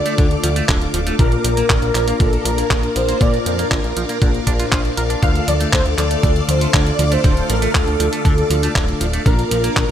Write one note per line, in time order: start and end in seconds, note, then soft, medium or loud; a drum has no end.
0.00 0.28 D3 medium
0.00 0.28 A3 medium
0.00 0.28 D4 medium
0.00 0.28 F4 medium
0.00 0.28 A4 loud
0.00 1.15 A4 medium
0.00 0.65 D5 loud
0.00 1.15 D5 medium
0.00 1.15 F5 medium
0.00 5.18 D6 medium
0.06 0.14 A3 medium
0.06 closed hi-hat medium
0.18 0.37 D2 medium
0.18 0.26 D3 medium
0.18 kick loud
0.18 closed hi-hat medium
0.31 0.66 D3 medium
0.31 0.66 A3 medium
0.31 0.66 D4 medium
0.31 0.66 F4 medium
0.31 0.66 A4 medium
0.31 closed hi-hat soft
0.43 0.62 D2 loud
0.43 0.48 F3 medium
0.43 closed hi-hat loud
0.56 0.64 A3 medium
0.56 closed hi-hat medium
0.69 0.87 D1 loud
0.69 1.16 D3 medium
0.69 0.77 D3 medium
0.69 1.16 A3 medium
0.69 1.16 D4 medium
0.69 1.16 F4 medium
0.69 1.16 A4 medium
0.69 kick loud
0.69 clap loud
0.69 closed hi-hat medium
0.81 closed hi-hat soft
0.94 1.12 D1 medium
0.94 0.99 F3 medium
0.94 closed hi-hat medium
1.07 1.15 A3 medium
1.07 closed hi-hat medium
1.19 1.37 A#1 loud
1.19 1.54 A#2 medium
1.19 1.27 D3 medium
1.19 1.54 A#3 medium
1.19 1.54 D4 medium
1.19 1.54 F4 medium
1.19 5.19 A#4 medium
1.19 1.54 A#4 loud
1.19 2.22 A#4 loud
1.19 9.91 D5 medium
1.19 9.91 F5 medium
1.19 kick loud
1.19 closed hi-hat medium
1.32 closed hi-hat soft
1.44 1.63 A#1 medium
1.44 1.49 F3 medium
1.44 closed hi-hat loud
1.57 1.92 A#2 medium
1.57 1.92 A#3 medium
1.57 1.65 A#3 medium
1.57 1.92 D4 medium
1.57 1.92 F4 medium
1.57 1.92 A#4 medium
1.57 closed hi-hat medium
1.70 1.79 A#1 medium
1.70 1.78 D3 medium
1.70 kick loud
1.70 clap loud
1.70 closed hi-hat soft
1.82 1.91 A#1 loud
1.82 closed hi-hat soft
1.95 2.13 A#1 medium
1.95 2.30 A#2 medium
1.95 2.00 F3 medium
1.95 2.30 A#3 medium
1.95 2.30 D4 medium
1.95 2.30 F4 medium
1.95 2.30 A#4 medium
1.95 clap medium
1.95 closed hi-hat medium
2.08 2.16 A#3 medium
2.08 closed hi-hat medium
2.20 2.38 A#1 loud
2.20 2.28 D3 medium
2.20 2.47 A4 medium
2.20 kick loud
2.20 closed hi-hat medium
2.32 2.67 A#2 medium
2.32 2.67 A#3 medium
2.32 2.67 D4 medium
2.32 2.67 F4 medium
2.32 2.67 A#4 medium
2.32 closed hi-hat soft
2.45 2.63 A#1 medium
2.45 2.50 F3 medium
2.45 2.97 A#4 loud
2.45 closed hi-hat medium
2.58 2.66 A#3 medium
2.58 closed hi-hat medium
2.70 2.89 A#1 medium
2.70 3.18 A#2 medium
2.70 2.79 D3 medium
2.70 3.18 A#3 medium
2.70 3.18 D4 medium
2.70 3.18 F4 medium
2.70 3.18 A#4 medium
2.70 kick loud
2.70 clap loud
2.70 closed hi-hat medium
2.83 closed hi-hat soft
2.96 3.14 A#1 loud
2.96 3.01 F3 medium
2.96 3.23 C5 loud
2.96 closed hi-hat medium
3.09 3.16 A#3 medium
3.09 closed hi-hat medium
3.21 3.56 A#2 loud
3.21 3.39 A#2 medium
3.21 3.29 D3 medium
3.21 3.56 A#3 medium
3.21 3.56 D4 medium
3.21 3.56 F4 medium
3.21 3.56 A#4 loud
3.21 3.71 D5 loud
3.21 kick loud
3.21 closed hi-hat soft
3.34 closed hi-hat soft
3.46 3.64 F2 medium
3.46 3.51 F3 medium
3.46 closed hi-hat medium
3.59 3.93 A#2 medium
3.59 3.93 A#3 medium
3.59 3.67 A#3 medium
3.59 3.93 D4 medium
3.59 3.93 F4 medium
3.59 3.94 A#4 medium
3.59 closed hi-hat medium
3.71 3.80 A#1 loud
3.71 3.79 D3 medium
3.71 kick loud
3.71 clap loud
3.71 closed hi-hat medium
3.84 3.93 A#1 loud
3.84 closed hi-hat soft
3.96 4.06 A#1 loud
3.96 4.31 A#2 medium
3.96 4.01 F3 medium
3.96 4.31 A#3 medium
3.96 4.31 D4 medium
3.96 4.31 F4 medium
3.96 4.31 A#4 medium
3.96 closed hi-hat medium
4.09 4.17 A#3 medium
4.09 closed hi-hat medium
4.22 4.40 A#1 medium
4.22 4.30 D3 medium
4.22 kick loud
4.22 closed hi-hat soft
4.34 4.57 A#2 medium
4.34 4.57 A#3 medium
4.34 4.57 D4 medium
4.34 4.57 F4 medium
4.34 4.57 A#4 medium
4.34 closed hi-hat soft
4.47 4.65 A#1 medium
4.47 4.52 D4 loud
4.47 kick medium
4.47 closed hi-hat medium
4.60 4.82 A#2 loud
4.60 4.82 A#3 medium
4.60 4.82 D4 medium
4.60 4.82 F4 medium
4.60 4.64 F4 medium
4.60 4.82 C5 loud
4.60 closed hi-hat medium
4.72 4.90 A#1 medium
4.72 4.80 F4 medium
4.72 kick loud
4.72 clap loud
4.72 closed hi-hat soft
4.85 4.94 A#2 medium
4.85 4.94 A#3 medium
4.85 4.94 D4 medium
4.85 4.94 F4 medium
4.85 4.94 C5 medium
4.85 closed hi-hat soft
4.97 5.16 A#1 medium
4.97 5.20 A#3 medium
4.97 5.20 D4 medium
4.97 5.19 F4 medium
4.97 5.19 A#4 medium
4.97 5.02 A#4 medium
4.97 closed hi-hat medium
5.10 5.22 D4 medium
5.10 closed hi-hat medium
5.22 5.41 D2 loud
5.22 5.31 D3 medium
5.22 5.57 D3 loud
5.22 5.57 A3 medium
5.22 5.57 D4 medium
5.22 5.57 F4 medium
5.22 5.57 A4 loud
5.22 9.22 A4 medium
5.22 5.46 F5 loud
5.22 9.22 D6 medium
5.22 kick loud
5.22 closed hi-hat medium
5.35 closed hi-hat soft
5.48 5.66 D2 medium
5.48 5.53 F3 medium
5.48 5.59 D5 loud
5.48 closed hi-hat medium
5.60 5.95 D3 medium
5.60 5.68 A3 medium
5.60 5.95 A3 medium
5.60 5.95 D4 medium
5.60 5.95 F4 medium
5.60 5.95 A4 loud
5.60 closed hi-hat medium
5.73 5.82 D2 medium
5.73 5.81 D3 medium
5.73 5.84 C5 loud
5.73 kick loud
5.73 clap loud
5.73 closed hi-hat medium
5.86 5.95 D2 loud
5.86 closed hi-hat soft
5.98 6.16 D2 medium
5.98 6.33 D3 medium
5.98 6.03 F3 medium
5.98 6.33 A3 medium
5.98 6.33 D4 medium
5.98 6.33 F4 medium
5.98 6.33 A4 loud
5.98 6.50 D5 loud
5.98 clap soft
5.98 closed hi-hat medium
6.11 6.19 A3 medium
6.11 closed hi-hat medium
6.23 6.42 D2 loud
6.23 6.32 D3 medium
6.23 kick loud
6.23 closed hi-hat medium
6.36 6.71 D3 medium
6.36 6.71 A3 medium
6.36 6.71 D4 medium
6.36 6.71 F4 medium
6.36 6.71 A4 medium
6.36 closed hi-hat soft
6.49 6.67 D2 medium
6.49 6.54 F3 medium
6.49 6.73 C5 loud
6.49 closed hi-hat medium
6.61 6.69 A3 medium
6.61 closed hi-hat medium
6.74 6.92 D2 medium
6.74 7.21 D3 medium
6.74 6.82 D3 medium
6.74 7.21 A3 medium
6.74 7.21 D4 medium
6.74 7.21 F4 medium
6.74 7.21 A4 medium
6.74 7.13 D5 loud
6.74 kick loud
6.74 clap loud
6.74 closed hi-hat medium
6.87 closed hi-hat soft
6.99 7.17 D2 loud
6.99 7.04 F3 medium
6.99 closed hi-hat medium
7.12 7.20 A3 medium
7.12 7.51 C5 loud
7.12 closed hi-hat medium
7.24 7.43 D1 medium
7.24 7.59 D3 loud
7.24 7.32 D3 medium
7.24 7.59 A3 medium
7.24 7.59 D4 medium
7.24 7.59 F4 medium
7.24 7.59 A4 loud
7.24 kick loud
7.24 closed hi-hat medium
7.37 closed hi-hat soft
7.49 7.68 A1 loud
7.49 7.54 F3 medium
7.49 7.76 A#4 medium
7.49 closed hi-hat loud
7.62 7.97 D3 medium
7.62 7.70 A3 medium
7.62 7.97 A3 medium
7.62 7.97 D4 medium
7.62 7.97 F4 medium
7.62 7.97 A4 loud
7.62 closed hi-hat medium
7.75 7.84 D2 loud
7.75 7.83 D3 medium
7.75 9.01 A4 medium
7.75 kick loud
7.75 clap loud
7.75 closed hi-hat medium
7.87 7.96 D2 loud
7.87 closed hi-hat soft
8.00 8.09 D2 loud
8.00 8.35 D3 medium
8.00 8.05 F3 medium
8.00 8.35 A3 medium
8.00 8.35 D4 medium
8.00 8.35 F4 medium
8.00 8.35 A4 loud
8.00 closed hi-hat medium
8.13 8.21 A3 medium
8.13 closed hi-hat medium
8.25 8.43 D2 medium
8.25 8.33 D3 medium
8.25 kick loud
8.25 closed hi-hat medium
8.38 8.72 D3 medium
8.38 8.72 A3 medium
8.38 8.72 D4 medium
8.38 8.72 F4 medium
8.38 8.72 A4 medium
8.38 closed hi-hat soft
8.50 8.69 D2 medium
8.50 8.55 F3 medium
8.50 closed hi-hat medium
8.63 8.71 A3 medium
8.63 closed hi-hat medium
8.75 8.94 D1 loud
8.75 9.23 D3 medium
8.75 8.84 D3 medium
8.75 9.23 A3 medium
8.75 9.23 D4 medium
8.75 9.23 F4 medium
8.75 9.23 A4 medium
8.75 kick loud
8.75 clap loud
8.75 closed hi-hat medium
8.88 closed hi-hat soft
9.01 9.19 D1 loud
9.01 9.06 F3 medium
9.01 closed hi-hat medium
9.13 9.21 A3 medium
9.13 closed hi-hat medium
9.26 9.44 A#1 loud
9.26 9.61 A#2 medium
9.26 9.34 D3 medium
9.26 9.61 A#3 medium
9.26 9.61 D4 medium
9.26 9.61 F4 medium
9.26 9.61 A#4 loud
9.26 9.91 A#4 medium
9.26 9.91 A#4 loud
9.26 9.91 D6 medium
9.26 kick loud
9.26 closed hi-hat medium
9.39 closed hi-hat soft
9.51 9.69 A#1 medium
9.51 9.56 F3 medium
9.51 closed hi-hat loud
9.64 9.91 A#2 medium
9.64 9.72 A#3 medium
9.64 9.91 A#3 medium
9.64 9.91 D4 medium
9.64 9.91 F4 medium
9.64 9.91 A#4 loud
9.64 closed hi-hat medium
9.76 9.85 A#1 medium
9.76 9.84 D3 medium
9.76 kick loud
9.76 clap loud
9.76 closed hi-hat medium